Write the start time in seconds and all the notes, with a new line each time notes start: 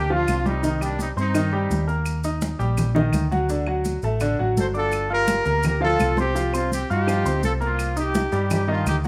Already playing: D2
0.10 F3 D4 F4 F5, high conga
0.28 C2, high conga, claves, maracas
0.46 G3 C4 D#4 G4 G5, high conga, maracas
0.63 D#3 D#4 D#5, high conga, maracas
0.81 G3 A#3 D4 G4 G5, high conga, claves, maracas
0.99 C4 D#4, high conga, maracas
1.17 G2 C4 D#4 C5 C6, high conga, maracas
1.34 D#3 D#4 D#5, high conga, claves, maracas
1.52 G3 G4 G5, high conga
1.70 D#2, high conga, maracas
1.88 A#3 A#4 A#5, maracas
2.06 high conga, claves, maracas
2.24 D#4 D#5 D#6, high conga, maracas
2.42 high conga, maracas
2.59 A#1 G3 G4 G5, high conga, maracas
2.77 high conga, low conga, claves, maracas
2.95 D#3 D#4 D#5, high conga, low conga
3.13 D2, high conga, claves, maracas
3.31 F#3 F#4 F#5, high conga, maracas
3.49 D3 D4 D5, high conga, maracas
3.67 F#3 F#4 F#5, high conga, claves
3.85 high conga, maracas
4.02 A1 A3 A4 A5, high conga, maracas
4.20 D3 D4 D5, high conga, claves, maracas
4.39 A1 F#3 F#4 F#5, high conga
4.57 G1 A4 C5, high conga, maracas
4.74 D4 F4 A4 D5 D6, maracas
4.92 high conga, claves, maracas
5.10 F4 G4 A#4 F5 F6, high conga
5.28 high conga, maracas
5.45 D2 A#3 A#4 A#5, high conga, maracas
5.63 G4 A#4, high conga, low conga, claves, maracas
5.81 F3 F4 A4 F5, high conga
6.00 C2, high conga, claves, maracas
6.17 C4 G4 C5 C6, high conga, maracas
6.35 F3 F4 F5, high conga, maracas
6.53 C4 D4 F4 C5 C6, high conga, claves, maracas
6.72 C4 G4, high conga, maracas
6.90 G2 D#4 F4 G4 F5 F6, high conga, maracas
7.07 F3 F4 F5, high conga, claves, maracas
7.25 D2 C4 C5 C6, high conga, maracas
7.43 C2 F4 A4, high conga, maracas
7.60 A#3 C4 F4 A#4 A#5, maracas
7.79 high conga, claves, maracas
7.96 D#4 G4 D#5 D#6, high conga, maracas
8.14 high conga, maracas
8.32 G2 G3 G4 G5, high conga, maracas
8.50 D#4 G4, high conga, low conga, claves, maracas
8.68 D#3 D4 D#4 F4 D#5, high conga
8.86 D2 D#4 G4, high conga, claves, maracas
9.04 F#3 F#5, maracas